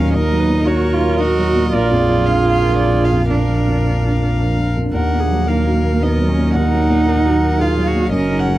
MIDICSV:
0, 0, Header, 1, 7, 480
1, 0, Start_track
1, 0, Key_signature, -6, "minor"
1, 0, Tempo, 526778
1, 125, Time_signature, 3, 2, 24, 8
1, 3005, Tempo, 544465
1, 5405, Tempo, 526316
1, 7740, End_track
2, 0, Start_track
2, 0, Title_t, "Violin"
2, 0, Program_c, 0, 40
2, 0, Note_on_c, 0, 77, 42
2, 116, Note_off_c, 0, 77, 0
2, 121, Note_on_c, 0, 75, 50
2, 613, Note_on_c, 0, 73, 51
2, 626, Note_off_c, 0, 75, 0
2, 1081, Note_off_c, 0, 73, 0
2, 1087, Note_on_c, 0, 75, 54
2, 1579, Note_on_c, 0, 74, 56
2, 1593, Note_off_c, 0, 75, 0
2, 2059, Note_on_c, 0, 77, 53
2, 2073, Note_off_c, 0, 74, 0
2, 2277, Note_off_c, 0, 77, 0
2, 2282, Note_on_c, 0, 77, 49
2, 2516, Note_off_c, 0, 77, 0
2, 2529, Note_on_c, 0, 74, 49
2, 2775, Note_on_c, 0, 77, 42
2, 2789, Note_off_c, 0, 74, 0
2, 3011, Note_off_c, 0, 77, 0
2, 3018, Note_on_c, 0, 77, 42
2, 4250, Note_off_c, 0, 77, 0
2, 4451, Note_on_c, 0, 78, 45
2, 4932, Note_on_c, 0, 77, 43
2, 4945, Note_off_c, 0, 78, 0
2, 5411, Note_on_c, 0, 75, 45
2, 5424, Note_off_c, 0, 77, 0
2, 5891, Note_off_c, 0, 75, 0
2, 5897, Note_on_c, 0, 78, 51
2, 6854, Note_on_c, 0, 77, 50
2, 6868, Note_off_c, 0, 78, 0
2, 7317, Note_off_c, 0, 77, 0
2, 7323, Note_on_c, 0, 75, 52
2, 7569, Note_on_c, 0, 78, 44
2, 7583, Note_off_c, 0, 75, 0
2, 7740, Note_off_c, 0, 78, 0
2, 7740, End_track
3, 0, Start_track
3, 0, Title_t, "Viola"
3, 0, Program_c, 1, 41
3, 0, Note_on_c, 1, 70, 47
3, 97, Note_off_c, 1, 70, 0
3, 126, Note_on_c, 1, 70, 55
3, 362, Note_on_c, 1, 71, 52
3, 375, Note_off_c, 1, 70, 0
3, 591, Note_off_c, 1, 71, 0
3, 596, Note_on_c, 1, 70, 60
3, 1546, Note_off_c, 1, 70, 0
3, 1577, Note_on_c, 1, 70, 63
3, 1806, Note_off_c, 1, 70, 0
3, 1821, Note_on_c, 1, 68, 53
3, 2988, Note_off_c, 1, 68, 0
3, 3011, Note_on_c, 1, 70, 43
3, 4247, Note_off_c, 1, 70, 0
3, 4442, Note_on_c, 1, 70, 47
3, 4680, Note_on_c, 1, 68, 42
3, 4693, Note_off_c, 1, 70, 0
3, 4923, Note_on_c, 1, 70, 47
3, 4936, Note_off_c, 1, 68, 0
3, 5390, Note_off_c, 1, 70, 0
3, 5395, Note_on_c, 1, 70, 49
3, 6352, Note_off_c, 1, 70, 0
3, 6371, Note_on_c, 1, 70, 49
3, 6838, Note_on_c, 1, 68, 51
3, 6852, Note_off_c, 1, 70, 0
3, 7318, Note_off_c, 1, 68, 0
3, 7328, Note_on_c, 1, 70, 49
3, 7740, Note_off_c, 1, 70, 0
3, 7740, End_track
4, 0, Start_track
4, 0, Title_t, "Cello"
4, 0, Program_c, 2, 42
4, 0, Note_on_c, 2, 61, 64
4, 131, Note_on_c, 2, 63, 76
4, 145, Note_off_c, 2, 61, 0
4, 605, Note_on_c, 2, 66, 77
4, 619, Note_off_c, 2, 63, 0
4, 854, Note_on_c, 2, 65, 82
4, 868, Note_off_c, 2, 66, 0
4, 1093, Note_on_c, 2, 66, 86
4, 1106, Note_off_c, 2, 65, 0
4, 1566, Note_off_c, 2, 66, 0
4, 1571, Note_on_c, 2, 65, 96
4, 2977, Note_off_c, 2, 65, 0
4, 3002, Note_on_c, 2, 62, 57
4, 3947, Note_off_c, 2, 62, 0
4, 4436, Note_on_c, 2, 58, 66
4, 5401, Note_on_c, 2, 59, 63
4, 5414, Note_off_c, 2, 58, 0
4, 5641, Note_on_c, 2, 61, 64
4, 5655, Note_off_c, 2, 59, 0
4, 5890, Note_on_c, 2, 63, 81
4, 5904, Note_off_c, 2, 61, 0
4, 6850, Note_on_c, 2, 65, 69
4, 6863, Note_off_c, 2, 63, 0
4, 7087, Note_on_c, 2, 66, 73
4, 7101, Note_off_c, 2, 65, 0
4, 7320, Note_off_c, 2, 66, 0
4, 7326, Note_on_c, 2, 61, 69
4, 7740, Note_off_c, 2, 61, 0
4, 7740, End_track
5, 0, Start_track
5, 0, Title_t, "Ambient pad"
5, 0, Program_c, 3, 92
5, 0, Note_on_c, 3, 54, 50
5, 0, Note_on_c, 3, 63, 54
5, 0, Note_on_c, 3, 70, 51
5, 1528, Note_off_c, 3, 54, 0
5, 1530, Note_off_c, 3, 63, 0
5, 1568, Note_on_c, 3, 53, 54
5, 1571, Note_on_c, 3, 62, 57
5, 4406, Note_off_c, 3, 70, 0
5, 4447, Note_off_c, 3, 53, 0
5, 4449, Note_off_c, 3, 62, 0
5, 4452, Note_on_c, 3, 70, 50
5, 4457, Note_on_c, 3, 54, 54
5, 4459, Note_on_c, 3, 63, 53
5, 7740, Note_off_c, 3, 54, 0
5, 7740, Note_off_c, 3, 63, 0
5, 7740, Note_off_c, 3, 70, 0
5, 7740, End_track
6, 0, Start_track
6, 0, Title_t, "Felt piano"
6, 0, Program_c, 4, 0
6, 0, Control_c, 4, 64, 127
6, 0, Note_on_c, 4, 39, 44
6, 0, Note_on_c, 4, 46, 40
6, 0, Note_on_c, 4, 54, 44
6, 0, Note_on_c, 4, 63, 42
6, 0, Note_on_c, 4, 66, 39
6, 0, Note_on_c, 4, 70, 41
6, 128, Note_off_c, 4, 39, 0
6, 128, Note_on_c, 4, 39, 53
6, 142, Control_c, 4, 64, 0
6, 143, Note_off_c, 4, 54, 0
6, 148, Note_off_c, 4, 63, 0
6, 149, Note_off_c, 4, 70, 0
6, 150, Note_off_c, 4, 66, 0
6, 226, Note_off_c, 4, 46, 0
6, 288, Note_on_c, 4, 54, 42
6, 302, Control_c, 4, 64, 127
6, 450, Note_on_c, 4, 46, 42
6, 542, Note_off_c, 4, 54, 0
6, 606, Note_on_c, 4, 63, 46
6, 704, Note_off_c, 4, 46, 0
6, 763, Note_on_c, 4, 66, 48
6, 864, Note_off_c, 4, 63, 0
6, 926, Note_on_c, 4, 70, 50
6, 1025, Note_off_c, 4, 66, 0
6, 1087, Note_on_c, 4, 63, 50
6, 1187, Note_off_c, 4, 70, 0
6, 1255, Note_on_c, 4, 54, 52
6, 1346, Note_off_c, 4, 63, 0
6, 1415, Note_on_c, 4, 46, 47
6, 1508, Note_off_c, 4, 54, 0
6, 1535, Note_off_c, 4, 39, 0
6, 1568, Note_on_c, 4, 34, 58
6, 1571, Note_off_c, 4, 46, 0
6, 1587, Control_c, 4, 64, 0
6, 1725, Control_c, 4, 64, 127
6, 1742, Note_on_c, 4, 41, 42
6, 1898, Note_on_c, 4, 53, 43
6, 1988, Note_off_c, 4, 41, 0
6, 2054, Note_on_c, 4, 62, 44
6, 2145, Note_off_c, 4, 53, 0
6, 2211, Note_on_c, 4, 65, 42
6, 2303, Note_off_c, 4, 62, 0
6, 2361, Note_on_c, 4, 70, 44
6, 2461, Note_off_c, 4, 65, 0
6, 2521, Note_on_c, 4, 62, 39
6, 2616, Note_off_c, 4, 70, 0
6, 2678, Note_on_c, 4, 53, 39
6, 2777, Note_off_c, 4, 62, 0
6, 2838, Note_on_c, 4, 41, 33
6, 2938, Note_off_c, 4, 53, 0
6, 2967, Note_off_c, 4, 34, 0
6, 3006, Note_on_c, 4, 34, 38
6, 3021, Control_c, 4, 64, 0
6, 3098, Note_off_c, 4, 41, 0
6, 3163, Note_on_c, 4, 53, 28
6, 3166, Control_c, 4, 64, 127
6, 3331, Note_on_c, 4, 41, 28
6, 3421, Note_off_c, 4, 53, 0
6, 3488, Note_on_c, 4, 62, 29
6, 3585, Note_off_c, 4, 41, 0
6, 3656, Note_on_c, 4, 65, 33
6, 3744, Note_off_c, 4, 62, 0
6, 3820, Note_on_c, 4, 70, 29
6, 3908, Note_off_c, 4, 65, 0
6, 3975, Note_on_c, 4, 62, 30
6, 4070, Note_off_c, 4, 70, 0
6, 4134, Note_on_c, 4, 53, 29
6, 4227, Note_off_c, 4, 62, 0
6, 4297, Note_on_c, 4, 41, 28
6, 4387, Note_off_c, 4, 53, 0
6, 4413, Note_off_c, 4, 34, 0
6, 4452, Note_off_c, 4, 41, 0
6, 4455, Note_on_c, 4, 39, 44
6, 4465, Control_c, 4, 64, 0
6, 4597, Control_c, 4, 64, 127
6, 4621, Note_on_c, 4, 46, 33
6, 4780, Note_on_c, 4, 54, 37
6, 4870, Note_off_c, 4, 46, 0
6, 4935, Note_on_c, 4, 63, 38
6, 5030, Note_off_c, 4, 54, 0
6, 5092, Note_on_c, 4, 66, 40
6, 5186, Note_off_c, 4, 63, 0
6, 5245, Note_on_c, 4, 70, 41
6, 5343, Note_off_c, 4, 66, 0
6, 5408, Note_on_c, 4, 63, 39
6, 5501, Note_off_c, 4, 70, 0
6, 5568, Note_on_c, 4, 54, 39
6, 5666, Note_off_c, 4, 63, 0
6, 5727, Note_on_c, 4, 46, 39
6, 5828, Note_off_c, 4, 54, 0
6, 5859, Note_off_c, 4, 39, 0
6, 5881, Note_on_c, 4, 39, 54
6, 5910, Control_c, 4, 64, 0
6, 5988, Note_off_c, 4, 46, 0
6, 6048, Note_on_c, 4, 54, 37
6, 6051, Control_c, 4, 64, 127
6, 6201, Note_on_c, 4, 46, 42
6, 6309, Note_off_c, 4, 54, 0
6, 6368, Note_on_c, 4, 63, 44
6, 6464, Note_off_c, 4, 46, 0
6, 6535, Note_on_c, 4, 66, 43
6, 6626, Note_off_c, 4, 63, 0
6, 6690, Note_on_c, 4, 70, 43
6, 6789, Note_off_c, 4, 66, 0
6, 6848, Note_on_c, 4, 63, 43
6, 6945, Note_off_c, 4, 70, 0
6, 7002, Note_on_c, 4, 54, 44
6, 7102, Note_off_c, 4, 63, 0
6, 7162, Note_on_c, 4, 46, 40
6, 7258, Note_off_c, 4, 54, 0
6, 7283, Note_off_c, 4, 39, 0
6, 7311, Note_on_c, 4, 42, 52
6, 7322, Note_off_c, 4, 46, 0
6, 7342, Control_c, 4, 64, 0
6, 7473, Note_on_c, 4, 49, 38
6, 7477, Control_c, 4, 64, 127
6, 7640, Note_on_c, 4, 54, 39
6, 7735, Note_off_c, 4, 49, 0
6, 7740, Note_off_c, 4, 42, 0
6, 7740, Note_off_c, 4, 54, 0
6, 7740, End_track
7, 0, Start_track
7, 0, Title_t, "Double bass"
7, 0, Program_c, 5, 43
7, 0, Note_on_c, 5, 39, 49
7, 1576, Note_on_c, 5, 34, 61
7, 1589, Note_off_c, 5, 39, 0
7, 4445, Note_on_c, 5, 39, 49
7, 4458, Note_off_c, 5, 34, 0
7, 7318, Note_on_c, 5, 30, 55
7, 7332, Note_off_c, 5, 39, 0
7, 7740, Note_off_c, 5, 30, 0
7, 7740, End_track
0, 0, End_of_file